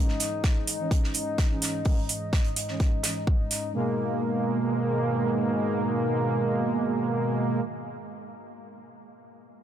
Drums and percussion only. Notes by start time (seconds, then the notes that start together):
0.08 snare
0.20 snare, closed hi-hat, open hi-hat
0.44 kick, snare, closed hi-hat
0.67 closed hi-hat, open hi-hat
0.91 kick, closed hi-hat
1.04 snare
1.14 closed hi-hat, open hi-hat
1.38 kick, snare, closed hi-hat
1.62 snare, closed hi-hat, open hi-hat
1.85 kick, open hi-hat
2.09 closed hi-hat, open hi-hat
2.33 kick, snare, closed hi-hat
2.44 closed hi-hat
2.56 closed hi-hat, open hi-hat
2.68 snare
2.80 kick, snare, closed hi-hat
3.03 snare, closed hi-hat, open hi-hat
3.27 kick
3.51 snare, closed hi-hat, open hi-hat